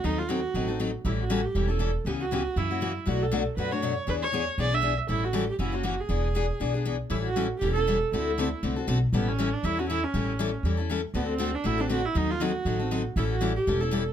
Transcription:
X:1
M:4/4
L:1/8
Q:"Swing" 1/4=238
K:Amix
V:1 name="Viola"
^D =F ^F4 z2 | E F2 G2 A2 z | G F3 E3 z | F A2 z B c2 z |
B c2 z d e2 z | E F2 G E F2 ^G- | ^G6 z2 | E F2 z G A2 z |
E4 z4 | B, C2 D E F E C- | C3 z4 z | B, =C2 D E D F E |
^D =F ^F4 z2 | E F2 G2 A2 z |]
V:2 name="Steel-string acoustic guitar"
[^D,F,^B,^DA] z [D,F,B,DA] z [D,F,B,DA] [B,DA] [D,F,B,DA] z | [E,G,CEA] z [E,G,CEA] z [E,G,CEA] [CEA] [E,G,CEA] z | [C,E,B,CG] z [C,E,B,CG] z [C,E,^A,CF] [A,CF] [C,E,A,CF] z | [B,,F,A,DF] z [B,,F,A,DF] z [B,,F,A,DF] [A,DF] [B,,F,A,DF] z |
[E,B,D^G] z [E,B,DG] z [E,B,DG] [B,DG] [E,B,DG] z | [E,G,CEA] z [E,G,CEA] z [C,E,^A,CF] [A,CF] [C,E,A,CF] z | [E,B,D^G] z [E,B,DG] z [E,B,DG] [B,DG] [E,B,DG] z | [E,G,CEA] z [E,G,CEA] z [E,G,CEA] [CEA] [E,G,CEA] z |
[D,A,=CFA] z [D,A,CFA] z [D,A,CFA] [CFA] [D,A,CFA] z | [E,G,CEA] z [E,G,CEA] z [E,G,CEA] [CEA] [E,G,CEA] z | [E,G,CEA] z [E,G,CEA] z [E,G,CEA] [CEA] [E,G,CEA] z | [D,A,=CFA] z [D,A,CFA] z [D,A,CFA] [CFA] [D,A,CFA] z |
[^D,F,^B,^DA] z [D,F,B,DA] z [D,F,B,DA] [B,DA] [D,F,B,DA] z | [E,G,CEA] z [E,G,CEA] z [E,G,CEA] [CEA] [E,G,CEA] z |]
V:3 name="Upright bass" clef=bass
^D,,4 A,,,4 | A,,,4 E,,,4 | C,,4 F,,4 | B,,,4 F,,4 |
E,,4 B,,,4 | A,,,4 F,,,4 | E,,,4 B,,,4 | A,,,4 E,,,4 |
D,,4 =C,,2 B,,,2 | A,,,4 E,,4 | A,,,4 E,,4 | D,,4 A,,,4 |
^D,,4 A,,,4 | A,,,4 E,,,4 |]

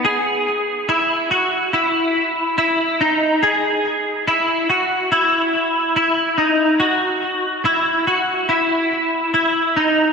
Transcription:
X:1
M:4/4
L:1/8
Q:1/4=71
K:E
V:1 name="Clean electric guitar"
G2 E F E2 E D | G2 E F E2 E D | F2 E F E2 E D |]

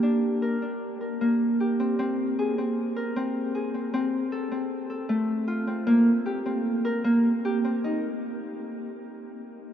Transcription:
X:1
M:5/4
L:1/8
Q:1/4=154
K:Cm
V:1 name="Harp"
D2 B D2 B B,2 G C | C2 A C2 B C2 A C | C2 =A C2 A =A,2 F C | B,2 G C2 B B,2 G C |
E z8 z |]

